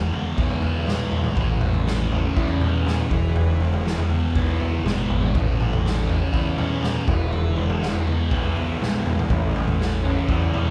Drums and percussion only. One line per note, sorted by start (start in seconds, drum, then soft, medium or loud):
0.00 floor tom medium
0.13 floor tom medium
0.38 kick loud
0.38 floor tom medium
0.50 floor tom medium
0.62 floor tom medium
0.87 snare medium
0.87 mid tom medium
1.12 floor tom medium
1.24 mid tom medium
1.36 kick loud
1.36 floor tom medium
1.61 floor tom medium
1.61 mid tom medium
1.74 floor tom medium
1.87 snare medium
2.12 floor tom medium
2.36 kick loud
2.36 floor tom medium
2.48 floor tom medium
2.61 floor tom medium
2.61 mid tom medium
2.86 snare medium
2.86 mid tom medium
3.11 kick medium
3.11 floor tom medium
3.36 floor tom medium
3.61 floor tom medium
3.73 floor tom medium
3.87 snare medium
3.98 floor tom medium
4.10 floor tom medium
4.35 kick loud
4.35 floor tom medium
4.48 floor tom medium
4.60 floor tom medium
4.86 snare medium
4.86 mid tom medium
5.11 floor tom medium
5.23 mid tom medium
5.35 kick loud
5.35 floor tom loud
5.60 floor tom medium
5.60 mid tom medium
5.73 floor tom medium
5.86 snare medium
6.09 floor tom medium
6.34 kick loud
6.34 floor tom medium
6.46 floor tom medium
6.58 floor tom medium
6.58 mid tom medium
6.83 snare medium
6.83 mid tom medium
7.08 kick loud
7.08 floor tom medium
7.33 floor tom medium
7.57 floor tom medium
7.70 floor tom medium
7.83 snare medium
7.94 floor tom medium
8.07 floor tom medium
8.31 kick loud
8.31 floor tom medium
8.45 floor tom medium
8.57 floor tom medium
8.82 snare medium
8.82 mid tom medium
9.06 floor tom medium
9.19 mid tom medium
9.30 kick loud
9.30 floor tom medium
9.56 floor tom medium
9.56 mid tom medium
9.68 floor tom loud
9.81 snare medium
10.05 floor tom medium
10.29 kick medium
10.29 floor tom medium
10.42 floor tom medium
10.54 floor tom medium
10.54 mid tom medium